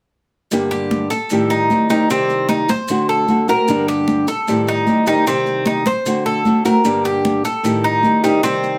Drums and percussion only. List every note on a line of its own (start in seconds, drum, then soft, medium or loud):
0.51 high conga soft
0.51 maracas medium
0.71 high conga soft
0.71 maracas soft
0.91 high conga medium
0.91 maracas soft
1.11 high conga soft
1.11 maracas medium
1.30 high conga soft
1.30 maracas medium
1.50 high conga soft
1.50 maracas soft
1.70 high conga medium
1.70 maracas soft
1.90 high conga medium
1.90 maracas medium
2.09 high conga soft
2.09 maracas medium
2.29 high conga soft
2.29 maracas soft
2.49 high conga medium
2.49 maracas soft
2.69 high conga medium
2.69 maracas medium
2.88 high conga soft
2.88 maracas medium
3.08 high conga soft
3.08 maracas soft
3.28 high conga medium
3.28 maracas soft
3.48 high conga medium
3.48 maracas medium
3.68 high conga soft
3.68 maracas medium
3.88 high conga soft
3.88 maracas soft
4.08 high conga medium
4.08 maracas soft
4.28 high conga soft
4.28 maracas medium
4.48 high conga soft
4.48 maracas medium
4.67 high conga soft
4.67 maracas soft
4.87 high conga medium
4.87 maracas soft
5.07 high conga medium
5.07 maracas medium
5.27 high conga soft
5.27 maracas medium
5.46 high conga soft
5.46 maracas soft
5.66 high conga medium
5.66 maracas soft
5.86 high conga medium
5.86 maracas medium
6.06 high conga soft
6.06 maracas medium
6.26 high conga soft
6.26 maracas soft
6.45 high conga medium
6.45 maracas soft
6.65 high conga medium
6.65 maracas medium
6.85 high conga soft
6.85 maracas medium
7.05 high conga soft
7.05 maracas soft
7.25 high conga medium
7.25 maracas soft
7.45 high conga soft
7.45 maracas medium
7.64 high conga soft
7.64 maracas medium
7.84 high conga soft
7.84 maracas soft
8.03 high conga medium
8.03 maracas soft
8.24 maracas medium
8.43 high conga soft
8.43 maracas medium
8.63 high conga soft
8.63 maracas soft